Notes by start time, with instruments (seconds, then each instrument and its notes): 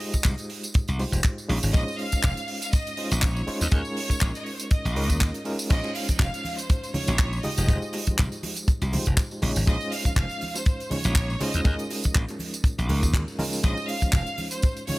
Already playing: reed electric piano G#3 D#4 F4 G4 C5
0.00 open hi-hat
0.13 muted slap bass stroke, kick, closed hi-hat, tambourine
0.24 slap bass C2, kick, clap, closed hi-hat, tambourine
0.38 closed hi-hat, tambourine
0.50 open hi-hat
0.63 closed hi-hat, tambourine
0.74 kick, closed hi-hat, tambourine
0.88 slap bass C2, closed hi-hat, tambourine
0.99 reed electric piano G#3 D#4 F4 G4 C5, open hi-hat
1.12 slap bass F1, kick, closed hi-hat, tambourine
1.24 kick, clap, closed hi-hat, tambourine
1.38 tambourine
1.49 slap bass A#1, reed electric piano G#3 C#4 D#4 F4 C#5, open hi-hat
1.63 slap bass G#1, open hi-hat, tambourine
1.73 slap bass A#1, reed electric piano G#3 C#4 D#4 F4 C5, violin section D#5, kick, closed hi-hat, tambourine
1.88 tambourine
1.99 violin section F5, open hi-hat
2.12 muted slap bass stroke, kick, closed hi-hat, tambourine
2.23 slap bass F1, kick, clap, closed hi-hat, tambourine
2.37 closed hi-hat, tambourine
2.48 open hi-hat
2.62 violin section F5, closed hi-hat, tambourine
2.73 violin section D#5, kick, closed hi-hat, tambourine
2.87 closed hi-hat, tambourine
2.97 reed electric piano G#3 C#4 D#4 F4 C5, open hi-hat
3.11 slap bass A#1, closed hi-hat, tambourine
3.17 violin section D#5
3.22 violin section C#5, kick, clap, closed hi-hat, tambourine
3.36 tambourine
3.47 reed electric piano G#3 C#4 D#4 F4 C5, muted slap bass stroke, open hi-hat
3.61 slap bass D#2, violin section D#5, closed hi-hat, tambourine
3.71 slap bass D#2, reed electric piano G#3 C#4 D#4 F4 A#4, violin section C#5, kick, closed hi-hat, tambourine
3.85 tambourine
3.97 open hi-hat
4.10 muted slap bass stroke, kick, closed hi-hat, tambourine
4.21 slap bass A#1, kick, clap, closed hi-hat, tambourine
4.35 violin section D#5, closed hi-hat, tambourine
4.45 violin section C#5, open hi-hat
4.54 violin section C5
4.60 violin section C#5, closed hi-hat, tambourine
4.71 violin section D#5, kick, closed hi-hat, tambourine
4.85 slap bass A#1, closed hi-hat, tambourine
4.96 slap bass C#2, reed electric piano G#3 C#4 D#4 F4 A#4, open hi-hat
5.10 slap bass D#2, kick, closed hi-hat, tambourine
5.20 slap bass D#2, kick, clap, closed hi-hat, tambourine
5.34 closed hi-hat, tambourine
5.45 reed electric piano G#3 C#4 D#4 F4 A#4, open hi-hat
5.59 open hi-hat, tambourine
5.70 slap bass A#1, reed electric piano G#3 C#4 D#4 F4 C5, violin section D#5, kick, closed hi-hat, crash, tambourine, cabasa
5.84 tambourine, high bongo
5.95 violin section F5, open hi-hat, cabasa
6.09 muted slap bass stroke, kick, closed hi-hat, tambourine, high conga, cabasa
6.20 slap bass F1, violin section F5, kick, clap, closed hi-hat, tambourine, high bongo, cabasa
6.34 closed hi-hat, tambourine
6.45 open hi-hat, high conga, cabasa
6.58 violin section C5, closed hi-hat, tambourine, cabasa
6.69 kick, closed hi-hat, tambourine, high bongo, cabasa
6.83 closed hi-hat, tambourine
6.94 reed electric piano G#3 C#4 D#4 F4 C#5, violin section C#5, open hi-hat, high conga, low conga, cabasa
7.07 slap bass A#1, closed hi-hat, tambourine, high bongo, cabasa
7.19 kick, clap, closed hi-hat, tambourine, cabasa
7.33 tambourine
7.43 reed electric piano G#3 D#4 F4 G4 D#5, violin section D#5, open hi-hat, low conga, cabasa
7.58 slap bass F1, closed hi-hat, tambourine, high bongo, cabasa
7.68 slap bass F1, reed electric piano G#3 D#4 F4 G4 C5, kick, closed hi-hat, tambourine, cabasa
7.82 tambourine
7.93 open hi-hat, high bongo, cabasa
8.07 muted slap bass stroke, kick, closed hi-hat, tambourine, high conga, cabasa
8.18 slap bass C2, kick, clap, closed hi-hat, tambourine
8.32 closed hi-hat, tambourine
8.43 open hi-hat, high bongo, high conga, cabasa
8.56 closed hi-hat, tambourine, cabasa
8.68 kick, closed hi-hat, tambourine, cabasa
8.82 slap bass C2, closed hi-hat, tambourine, high bongo
8.92 reed electric piano G#3 D#4 F4 G4 C5, open hi-hat, high conga, low conga, cabasa
9.06 slap bass F1, kick, closed hi-hat, tambourine, cabasa
9.17 kick, clap, closed hi-hat, tambourine, cabasa
9.31 tambourine, high bongo
9.42 slap bass A#1, reed electric piano G#3 C#4 D#4 F4 C#5, open hi-hat, high conga, low conga, cabasa
9.56 slap bass G#1, open hi-hat, tambourine, cabasa
9.66 slap bass A#1, reed electric piano G#3 C#4 D#4 F4 C5, violin section D#5, kick, tambourine, high bongo, cabasa
9.81 tambourine
9.92 violin section F5, open hi-hat, cabasa
10.05 muted slap bass stroke, kick, closed hi-hat, tambourine, high conga, cabasa
10.16 slap bass F1, violin section F5, kick, clap, closed hi-hat, tambourine, high bongo, cabasa
10.29 closed hi-hat, tambourine
10.41 open hi-hat, high conga, cabasa
10.55 violin section C5, closed hi-hat, tambourine, high bongo, cabasa
10.66 kick, closed hi-hat, tambourine, cabasa
10.80 closed hi-hat, tambourine
10.90 reed electric piano G#3 C#4 D#4 F4 C#5, violin section C#5, open hi-hat, high conga, low conga, cabasa
11.04 slap bass A#1, closed hi-hat, tambourine, high bongo, cabasa
11.15 kick, clap, closed hi-hat, tambourine, cabasa
11.30 tambourine
11.40 reed electric piano G#3 C#4 D#4 F4 C5, violin section D#5, muted slap bass stroke, open hi-hat, high bongo, low conga, cabasa
11.54 slap bass D#2, closed hi-hat, tambourine, cabasa
11.65 slap bass D#2, reed electric piano G#3 C#4 D#4 F4 A#4, kick, closed hi-hat, tambourine, cabasa
11.79 closed hi-hat, tambourine
11.90 open hi-hat, high bongo, cabasa
12.04 muted slap bass stroke, kick, closed hi-hat, tambourine, high conga, cabasa
12.14 slap bass A#1, kick, clap, closed hi-hat, tambourine
12.28 closed hi-hat, tambourine, high bongo
12.39 open hi-hat, high conga, cabasa
12.54 closed hi-hat, tambourine, cabasa
12.64 kick, closed hi-hat, tambourine, cabasa
12.78 slap bass A#1, closed hi-hat, tambourine, high bongo
12.89 slap bass C#2, reed electric piano G#3 C#4 D#4 F4 A#4, open hi-hat, high conga, low conga, cabasa
13.03 slap bass D#2, kick, closed hi-hat, tambourine, cabasa
13.14 slap bass D#2, kick, clap, closed hi-hat, tambourine, high bongo, cabasa
13.28 tambourine
13.39 reed electric piano G#3 C#4 D#4 F4 A#4, open hi-hat, high conga, low conga, cabasa
13.53 open hi-hat, tambourine, cabasa
13.63 slap bass A#1, reed electric piano G#3 C#4 D#4 F4 C5, violin section D#5, kick, closed hi-hat, tambourine, cabasa
13.77 tambourine, high bongo
13.89 violin section F5, open hi-hat, cabasa
14.02 muted slap bass stroke, kick, closed hi-hat, tambourine, high conga, cabasa
14.13 slap bass F1, violin section F5, kick, clap, closed hi-hat, tambourine, high bongo, cabasa
14.26 closed hi-hat, tambourine
14.38 open hi-hat, high conga, cabasa
14.51 violin section C5, closed hi-hat, tambourine, cabasa
14.62 kick, closed hi-hat, tambourine, high bongo, cabasa
14.77 closed hi-hat, tambourine
14.87 reed electric piano G#3 C#4 D#4 F4 C#5, violin section C#5, open hi-hat, high conga, low conga, cabasa